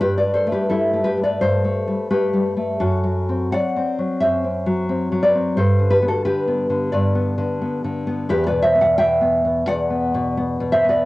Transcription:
0.01 1.36 G2 medium
0.01 0.17 G4 medium
0.01 0.17 B4 loud
0.18 0.35 B4 medium
0.18 0.33 D5 medium
0.24 0.69 G3 medium
0.34 0.51 A4 medium
0.34 0.52 C5 medium
0.47 0.92 A3 medium
0.52 0.69 G4 medium
0.52 0.70 B4 medium
0.69 1.16 G3 medium
0.69 1.03 E4 medium
0.69 1.03 A4 medium
0.93 1.63 A3 medium
1.04 1.21 G4 medium
1.04 1.22 B4 medium
1.17 1.86 G3 medium
1.23 1.40 B4 medium
1.23 1.40 D5 medium
1.41 2.75 G2 medium
1.41 2.06 A4 medium
1.41 2.07 C5 loud
1.64 2.09 A3 medium
1.88 2.32 G3 medium
2.11 2.55 A3 medium
2.11 2.76 G4 medium
2.11 2.77 B4 loud
2.33 2.79 G3 medium
2.57 2.80 A3 medium
2.80 3.52 F#2 medium
2.80 3.49 F#4 medium
2.80 3.49 A4 medium
3.04 3.52 F#3 medium
3.29 3.75 C4 medium
3.52 3.97 F#3 medium
3.52 4.18 D5 medium
3.52 4.18 F#5 loud
3.76 4.43 C4 medium
3.99 4.65 F#3 medium
4.20 5.54 F#2 medium
4.20 5.20 C5 medium
4.20 5.19 E5 loud
4.44 4.88 C4 medium
4.66 5.11 F#3 medium
4.89 5.34 C4 medium
5.12 5.58 F#3 medium
5.23 5.56 B4 medium
5.23 5.56 D5 loud
5.35 5.58 C4 medium
5.57 6.88 G2 medium
5.57 5.89 A4 medium
5.57 5.90 C5 loud
5.79 6.24 D3 medium
5.90 6.02 G4 medium
5.90 6.08 B4 loud
6.02 6.09 B3 medium
6.08 6.24 F#4 medium
6.08 6.25 A4 loud
6.25 6.68 D3 medium
6.25 6.88 G4 medium
6.25 6.89 B4 loud
6.48 7.14 B3 medium
6.70 7.37 D3 medium
6.92 8.25 G2 medium
6.92 7.57 B4 medium
6.92 7.58 D5 loud
7.15 7.60 B3 medium
7.38 7.83 D3 medium
7.62 8.06 B3 medium
7.84 8.29 D3 medium
8.07 8.29 B3 medium
8.29 9.63 E2 medium
8.29 8.46 G4 medium
8.29 8.46 B4 loud
8.46 8.63 B4 medium
8.46 8.62 D5 loud
8.51 8.98 B2 medium
8.62 8.75 C5 medium
8.62 8.80 E5 loud
8.75 8.82 B3 medium
8.81 8.97 D5 medium
8.81 8.97 F#5 loud
8.98 9.44 B2 medium
8.98 9.63 E5 loud
8.98 9.64 G5 loud
9.21 9.68 B3 medium
9.45 10.13 B2 medium
9.67 11.02 E2 medium
9.67 10.68 D5 loud
9.67 10.67 F#5 loud
9.90 10.36 B3 medium
10.14 10.59 B2 medium
10.37 10.83 B3 medium
10.60 11.05 B2 medium
10.72 10.88 C5 medium
10.72 10.89 E5 loud
10.84 11.05 B3 medium
10.89 11.05 B4 medium
10.89 11.05 D5 loud

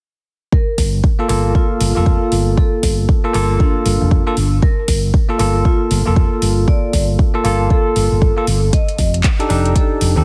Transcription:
0.52 0.88 A#4 medium
0.52 kick loud
0.78 1.00 G1 medium
0.78 kick medium
0.78 open hi-hat loud
1.04 kick loud
1.19 1.27 A#3 medium
1.19 1.27 F4 medium
1.19 1.27 A4 medium
1.28 1.51 G1 medium
1.28 1.92 A#3 medium
1.28 1.93 F4 medium
1.28 1.93 A4 medium
1.28 open hi-hat medium
1.55 2.49 F4 medium
1.55 kick loud
1.81 1.93 G1 medium
1.81 open hi-hat loud
1.95 2.16 F1 medium
1.95 3.20 A#3 medium
1.95 3.21 F4 medium
1.95 3.21 A4 medium
2.06 kick loud
2.32 2.54 G1 medium
2.32 open hi-hat medium
2.57 2.93 A4 medium
2.57 kick loud
2.83 3.05 G1 medium
2.83 kick medium
2.83 open hi-hat loud
3.09 kick loud
3.24 3.32 A#3 loud
3.24 3.33 F4 medium
3.24 3.33 A4 loud
3.33 3.56 G1 medium
3.33 4.23 A#3 medium
3.33 4.23 F4 medium
3.33 4.24 A4 loud
3.33 open hi-hat medium
3.60 4.55 D4 medium
3.60 kick loud
3.86 3.98 G1 medium
3.86 open hi-hat loud
4.01 4.21 F1 medium
4.11 kick loud
4.26 4.34 A#3 medium
4.26 4.35 F4 medium
4.26 4.35 A4 loud
4.37 4.59 G1 medium
4.37 open hi-hat medium
4.63 4.98 A#4 medium
4.63 kick loud
4.88 5.10 G1 medium
4.88 kick medium
4.88 open hi-hat loud
5.14 kick loud
5.29 5.37 A#3 medium
5.29 5.37 F4 medium
5.29 5.37 A4 loud
5.38 5.61 G1 medium
5.38 6.02 A#3 medium
5.38 6.03 F4 medium
5.38 6.03 A4 medium
5.38 open hi-hat medium
5.65 6.60 F4 medium
5.65 kick loud
5.91 6.03 G1 medium
5.91 open hi-hat loud
6.05 6.26 F1 medium
6.05 7.30 A#3 medium
6.05 7.31 F4 medium
6.05 7.31 A4 medium
6.16 kick loud
6.42 6.64 G1 medium
6.42 open hi-hat medium
6.68 7.03 D5 medium
6.68 kick loud
6.93 7.15 G1 medium
6.93 kick medium
6.93 open hi-hat loud
7.19 kick loud
7.34 7.42 A#3 medium
7.34 7.43 F4 medium
7.34 7.43 A4 loud
7.44 7.67 G1 medium
7.44 8.33 A#3 medium
7.44 8.33 F4 medium
7.44 8.34 A4 loud
7.44 open hi-hat medium
7.70 8.65 A4 medium
7.70 kick loud
7.96 8.09 G1 medium
7.96 open hi-hat loud
8.12 8.31 G1 medium
8.22 kick loud
8.37 8.45 A#3 medium
8.37 8.45 F4 medium
8.37 8.45 A4 loud
8.47 8.69 G1 medium
8.47 open hi-hat medium
8.73 9.08 D#5 medium
8.73 kick loud
8.73 closed hi-hat medium
8.88 closed hi-hat soft
8.98 9.20 F1 medium
8.98 kick medium
8.98 open hi-hat medium
9.14 closed hi-hat soft
9.24 kick loud
9.24 clap loud
9.24 closed hi-hat medium
9.39 9.47 D4 medium
9.39 9.47 D#4 medium
9.39 9.48 G4 medium
9.39 9.48 A4 loud
9.39 closed hi-hat soft
9.49 9.72 F1 medium
9.49 10.12 D4 medium
9.49 10.13 D#4 medium
9.49 10.13 G4 medium
9.49 10.13 A4 medium
9.49 open hi-hat medium
9.65 closed hi-hat soft
9.76 10.24 A4 medium
9.76 kick loud
9.76 closed hi-hat medium
10.01 10.14 F1 medium
10.01 open hi-hat loud
10.16 10.24 D#2 medium
10.16 10.24 C4 medium
10.16 10.24 D#4 medium
10.16 10.24 G4 medium
10.16 10.24 A4 medium

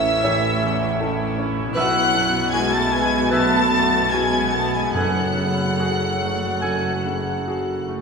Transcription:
0.00 0.21 A1 medium
0.00 1.73 A1 medium
0.00 0.63 E2 medium
0.00 1.71 A2 medium
0.00 1.72 A2 medium
0.00 1.38 E3 medium
0.00 0.48 C#4 medium
0.00 1.73 C#4 medium
0.00 1.01 E4 medium
0.00 1.66 E4 medium
0.00 4.96 E4 medium
0.00 1.01 A4 medium
0.00 1.77 A4 medium
0.00 1.38 E5 medium
0.00 1.39 E5 loud
0.00 1.38 E6 loud
0.24 1.73 A1 medium
0.24 0.52 C#5 medium
0.24 0.52 E5 medium
0.63 1.23 E2 medium
1.01 1.35 E4 medium
1.01 1.35 A4 medium
1.38 1.77 C#4 medium
1.58 4.90 B2 medium
1.63 4.92 B3 medium
1.67 4.94 E4 medium
1.72 2.49 F#3 loud
1.72 4.86 F#4 medium
1.72 2.04 B4 medium
1.72 2.49 F#6 loud
1.76 3.28 B1 medium
1.76 4.91 B1 loud
1.76 4.91 B2 medium
1.76 5.75 B3 medium
1.76 2.04 E5 medium
1.76 2.54 F#5 loud
1.76 2.50 F#5 loud
2.14 2.76 F#2 medium
2.53 2.73 G#3 medium
2.53 2.88 E4 medium
2.53 2.88 F#4 medium
2.53 2.76 G#5 loud
2.53 2.73 G#5 loud
2.53 2.73 G#6 loud
2.73 2.92 A3 medium
2.73 2.93 A5 medium
2.73 2.95 A5 loud
2.73 2.93 A6 loud
2.91 3.32 G#3 medium
2.91 3.56 B3 medium
2.91 3.30 G#5 medium
2.91 3.34 G#5 medium
2.91 3.32 G#6 loud
3.31 4.92 B1 medium
3.31 4.11 A3 loud
3.31 3.60 B4 medium
3.31 3.61 E5 medium
3.31 4.11 A5 loud
3.31 4.14 A5 loud
3.31 4.10 A6 loud
3.74 4.38 F#2 medium
4.10 4.53 G#3 medium
4.10 4.50 E4 medium
4.10 4.50 F#4 medium
4.10 4.52 G#5 medium
4.10 4.56 G#5 medium
4.10 4.53 G#6 loud
4.51 4.73 A3 medium
4.51 4.96 B3 soft
4.51 4.74 A5 medium
4.51 4.76 A5 medium
4.51 4.74 A6 medium
4.72 4.94 G#3 medium
4.72 4.95 G#5 medium
4.72 4.96 G#6 medium
4.78 8.01 F#2 medium
4.83 8.01 A3 medium
4.87 8.01 F#4 soft
4.91 6.17 F#2 loud
4.91 7.88 F#3 medium
4.91 7.84 F#5 medium
4.91 8.01 G#5 medium
4.91 7.84 F#6 medium
4.96 8.01 F#1 medium
4.96 8.01 F#2 medium
4.96 6.59 F#2 medium
4.96 5.27 A4 medium
4.96 8.01 A4 medium
4.96 5.27 G#5 medium
5.37 6.04 C#3 soft
5.80 8.01 A3 medium
5.80 6.17 F#4 soft
5.80 6.18 G#4 medium
6.22 6.88 A3 soft
6.61 8.01 F#2 medium
6.61 6.94 A4 medium
6.61 6.93 G#5 medium
7.05 7.72 C#3 soft
7.48 7.85 F#4 soft
7.48 7.85 G#4 soft
7.88 8.01 A3 soft

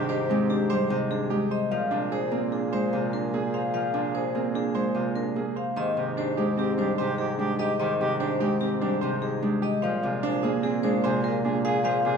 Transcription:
0.00 1.59 G#2 medium
0.00 0.89 C3 medium
0.00 1.73 D#3 loud
0.00 0.70 G3 medium
0.00 0.29 G#3 medium
0.00 0.15 D4 loud
0.00 1.47 G4 medium
0.09 0.36 G4 loud
0.09 0.36 C5 medium
0.29 1.30 G#3 loud
0.29 0.56 C4 medium
0.50 0.76 D4 medium
0.50 0.76 G4 medium
0.70 1.73 G3 medium
0.70 0.96 C5 medium
0.70 0.97 C5 loud
0.90 1.73 C3 loud
0.90 1.17 D#4 medium
1.10 1.37 D4 medium
1.10 1.37 G#4 medium
1.30 2.72 G#3 medium
1.30 1.57 G4 loud
1.51 1.78 C5 medium
1.51 1.78 D#5 medium
1.71 5.65 A#2 medium
1.71 3.72 F3 loud
1.71 1.98 F4 medium
1.71 5.53 G#4 medium
1.71 1.98 F5 medium
1.91 2.92 C3 medium
1.91 2.18 D4 loud
2.12 2.38 G#4 loud
2.12 2.39 C5 medium
2.32 3.32 A#3 loud
2.32 2.59 C4 medium
2.52 2.79 D4 medium
2.52 2.79 G#4 medium
2.73 4.73 G#3 medium
2.73 2.99 C5 medium
2.93 3.93 C3 medium
2.93 3.19 F4 medium
3.13 3.40 D4 medium
3.13 3.40 A#4 medium
3.33 4.34 A#3 medium
3.33 3.60 G#4 medium
3.54 3.80 C5 medium
3.54 3.73 F5 medium
3.73 5.78 F3 medium
3.73 4.01 F4 medium
3.73 4.01 F5 medium
3.94 4.93 C3 medium
3.94 4.21 D4 medium
4.15 4.41 G#4 medium
4.15 4.41 C5 medium
4.35 5.35 A#3 medium
4.35 4.61 C4 medium
4.55 4.82 D4 medium
4.55 4.82 G#4 medium
4.74 6.37 G#3 medium
4.74 5.02 C5 medium
4.95 5.78 C3 medium
4.95 5.22 F4 medium
5.15 5.42 D4 medium
5.15 5.42 A#4 medium
5.36 5.78 A#3 medium
5.36 5.63 G#4 medium
5.56 5.75 C5 medium
5.56 5.83 F5 medium
5.76 9.70 G#2 medium
5.76 7.79 D#3 loud
5.76 5.91 G4 soft
5.76 6.03 C5 medium
5.76 6.03 D#5 loud
5.97 6.98 C3 medium
5.97 6.24 D#4 medium
5.97 6.11 G4 medium
6.17 6.44 D4 loud
6.17 6.32 G4 medium
6.17 6.44 C5 medium
6.37 7.38 G#3 loud
6.37 6.64 G4 medium
6.37 6.52 G4 medium
6.57 6.84 C4 medium
6.57 6.85 G4 medium
6.57 6.73 G4 medium
6.78 8.81 G3 medium
6.78 7.05 D4 medium
6.78 6.93 G4 medium
6.78 7.05 C5 medium
6.98 8.00 C3 medium
6.98 7.14 G4 medium
6.98 7.25 C5 loud
7.18 7.45 D#4 medium
7.18 7.33 G4 medium
7.18 7.45 G#4 medium
7.38 8.39 G#3 medium
7.38 7.65 D4 medium
7.38 7.54 G4 medium
7.59 7.86 G4 loud
7.59 7.74 G4 medium
7.59 7.78 D#5 medium
7.80 9.84 D#3 loud
7.80 7.95 G4 medium
7.80 8.06 C5 medium
7.80 8.06 D#5 medium
8.00 9.01 C3 medium
8.00 8.26 D#4 medium
8.00 8.15 G4 loud
8.20 8.46 D4 loud
8.20 8.35 G4 medium
8.20 8.47 C5 medium
8.40 9.41 G#3 loud
8.40 8.67 G4 loud
8.40 8.55 G4 medium
8.61 8.87 C4 medium
8.61 8.87 G4 medium
8.61 8.76 G4 medium
8.81 9.85 G3 medium
8.81 9.08 D4 medium
8.81 8.96 G4 medium
8.81 9.08 C5 medium
9.01 9.85 C3 loud
9.01 9.16 G4 medium
9.01 9.28 C5 medium
9.22 9.48 D#4 medium
9.22 9.37 G4 soft
9.22 9.48 G#4 medium
9.42 10.83 G#3 medium
9.42 9.68 D4 medium
9.42 9.57 G4 soft
9.62 9.88 G4 loud
9.62 9.89 D#5 medium
9.82 12.17 A#2 medium
9.82 11.83 F3 loud
9.82 9.97 G#4 soft
9.82 10.09 C5 medium
9.82 10.09 F5 medium
10.03 11.03 C3 medium
10.03 10.29 F4 medium
10.03 10.18 G#4 medium
10.23 10.49 D4 loud
10.23 10.38 G#4 medium
10.23 10.49 C5 medium
10.43 11.43 A#3 loud
10.43 10.69 G#4 loud
10.43 10.58 G#4 medium
10.63 10.90 C4 medium
10.63 10.90 G#4 medium
10.63 10.78 G#4 medium
10.83 12.17 G#3 medium
10.83 11.10 D4 medium
10.83 10.98 G#4 medium
10.83 11.10 C5 medium
11.04 12.04 C3 loud
11.04 11.18 G#4 medium
11.04 11.30 C5 loud
11.23 11.50 F4 medium
11.23 11.37 G#4 medium
11.23 11.51 A#4 medium
11.44 12.17 A#3 medium
11.44 11.71 D4 medium
11.44 11.58 G#4 medium
11.65 11.79 G#4 loud
11.65 11.91 G#4 loud
11.65 11.84 F5 loud
11.84 12.17 F3 loud
11.84 11.99 G#4 medium
11.84 12.11 C5 medium
11.84 12.11 F5 loud
12.05 12.17 C3 medium
12.05 12.17 F4 medium
12.05 12.17 G#4 loud

